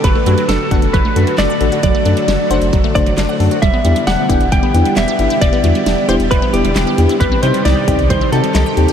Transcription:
<<
  \new Staff \with { instrumentName = "Clean electric guitar" } { \time 4/4 \key d \mixolydian \tempo 4 = 134 b'4 a'4 b'4 d''4 | d''2 r8 d''4. | e''4 fis''4 g''4 e''4 | d''4. c''8 b'8 g'4. |
b'8 c''8 d''4 c''8 a'4. | }
  \new Staff \with { instrumentName = "FM electric piano" } { \time 4/4 \key d \mixolydian r8 <a d' fis' a'>8 r8 <a d' fis' a'>8 r8 <a d' fis' a'>8 r8 <a d' fis' a'>8 | r8 <a d' fis' a'>8 r8 <a d' fis' c''>8 r8 <a d' fis' c''>8 r8 <a d' fis' a'>8 | r8 <b d' e' g'>8 r8 <b d' e' g'>8 r8 <b d' e' g'>8 r8 <b d' e' g'>8 | r8 <b d' e' fis'>8 r8 <b d' e' g'>8 r8 <b d' e' g'>8 r8 <b d' e' g'>8 |
r8 <g c' ees' g'>8 r8 <g c' ees' g'>8 r8 <g c' ees' fis'>8 r8 <g c' ees' g'>8 | }
  \new Staff \with { instrumentName = "String machine" } { \time 4/4 \key d \mixolydian << { <fis a fis' a'>1~ | <fis a fis' a'>1 | <g b e' g'>1~ | <g b e' g'>1 |
<ees ees' g'>1 | } \\ { d1~ | d1~ | d1~ | d1 |
c1 | } >> }
  \new Staff \with { instrumentName = "Synth arpeggio sound" } { \time 4/4 \key d \mixolydian fis16 a16 fis16 fis16 d'16 r16 fis''16 r16 fis16 a16 r16 fis16 d'16 fis''16 r16 fis'16 | fis16 a16 fis16 fis16 d'16 r16 fis''16 r16 fis16 a16 r16 fis16 d'16 fis''16 r16 fis'16 | g16 b16 g16 g16 d'16 r16 g'16 r16 g16 b16 r16 g16 d'16 g'16 r16 e'16 | g16 b16 g16 g16 d'16 r16 g'16 r16 g16 b16 r16 g16 d'16 g'16 r16 e'16 |
g16 c'16 g16 g16 ees'16 r16 g''16 r16 g16 c'16 r16 g16 ees'16 g''16 r16 g'16 | }
  \new Staff \with { instrumentName = "Analog synth bass" } { \clef bass \time 4/4 \key d \mixolydian fis,,16 r16 fis,16 r16 fis,,16 r16 fis,,16 fis,,16 fis,,16 r16 fis,16 r16 fis,,16 r16 a,,16 r16 | fis,,16 r16 fis,16 r16 fis,,16 r16 fis,,16 fis,,16 fis,,16 r16 fis,,16 fis,,16 fis,,16 r16 fis,16 r16 | e,,16 r16 e,16 r16 e,,16 r16 e,,16 e,,16 e,,16 r16 e,16 r16 e,,16 r16 g,,16 r16 | e,,16 r16 e,16 r16 e,,16 r16 e,,16 e,,16 e,,16 r16 e,,16 e,,16 e,,16 r16 e,16 r16 |
c,16 r16 c16 r16 c,16 r16 c,16 c,16 c,16 r16 c16 r16 c,16 r16 ees,16 r16 | }
  \new DrumStaff \with { instrumentName = "Drums" } \drummode { \time 4/4 <hh bd>8 hh16 hh16 <hh sn>8 <hh bd>16 hh16 <hh bd>8 hh16 hh16 <hc hh sn>8 hh16 hh16 | <hh bd>8 hh16 hh16 <hh sn>8 hh16 hh16 <hh bd>8 <hh bd>16 hh16 <hc hh sn>8 hho16 hh16 | <hh bd>8 hh16 hh16 <hh sn>8 <hh bd>16 hh16 <hh bd>8 hh16 hh16 <hc hh sn>8 hh16 hh16 | <hh bd>8 hh16 hh16 <hh sn>8 hh16 hh16 <hh bd>8 hh16 hh16 <hc hh sn>8 hh16 hh16 |
<hh bd>8 hh16 hh16 <hh sn>8 <hh bd>16 hh16 <hh bd>8 hh16 hh16 <hc hh sn>8 hh16 hh16 | }
>>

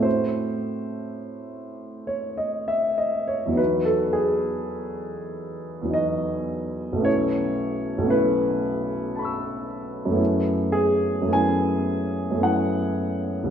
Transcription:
<<
  \new Staff \with { instrumentName = "Grand piano" } { \time 3/4 \key e \major \tempo 4 = 53 << { r2. | r2. | r2 <a'' b'' cis''' e'''>4 | r2. | } \\ { c''4.~ c''16 cis''16 dis''16 e''16 dis''16 cis''16 | b'16 a'16 gis'4. dis''4 | cis''4 b'4. r8 | r8 gis'8 gis''4 fis''4 | } >> }
  \new Staff \with { instrumentName = "Grand piano" } { \time 3/4 \key e \major <a, a c' e' fis'>2. | <e, fis b dis' fis'>2 <e, fis b dis' fis'>4 | <b,, a b cis' e'>4 <b,, a b cis' e'>2 | <fis, a b cis' e'>4 <fis, a b cis' e'>4 <fis, a b cis' e'>4 | }
>>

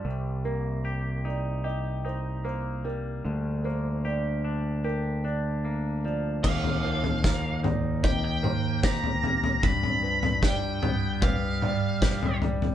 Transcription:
<<
  \new Staff \with { instrumentName = "Lead electric guitar" } { \time 4/4 \key g \minor \tempo 4 = 75 r1 | r1 | f''4. r8 g''16 g''8. bes''4 | b''4 g''4 f''4. r8 | }
  \new Staff \with { instrumentName = "Felt piano" } { \time 4/4 \key g \minor r8 bes'4 d''8 ees''8 c''8 c''8 bes'8~ | bes'8 c''8 d''4 bes'8 d''4 d''8 | r8 bes'4 d''8 ees''8 c''8 c''8 g'8~ | g'8 b'8 d''4 b'8 d''4 d''8 | }
  \new Staff \with { instrumentName = "Clean electric guitar" } { \time 4/4 \key g \minor c8 bes8 g'8 ees'8 g'8 ees'8 bes8 g8 | d8 bes8 g'8 d'8 g'8 d'8 bes8 f8 | ees8 f8 bes8 ees'8 g'8 bes8 g'8 bes8 | g,8 f8 g8 b8 g'8 g8 g'8 g8 | }
  \new Staff \with { instrumentName = "Picked electric bass" } { \clef bass \time 4/4 \key g \minor c,1 | d,1 | ees,1 | g,1 | }
  \new DrumStaff \with { instrumentName = "Drums" } \drummode { \time 4/4 r4 r4 r4 r4 | r4 r4 r4 r4 | <cymc bd tomfh>16 tomfh8 tomfh16 <bd sn>8 <tomfh toml>8 <bd tomfh>8 toml8 <bd sn>16 tomfh16 tomfh16 tomfh16 | <bd tomfh>16 tomfh8 tomfh16 <bd sn>8 <tomfh toml>8 <bd tomfh>8 toml8 <bd sn>16 tomfh16 tomfh16 tomfh16 | }
>>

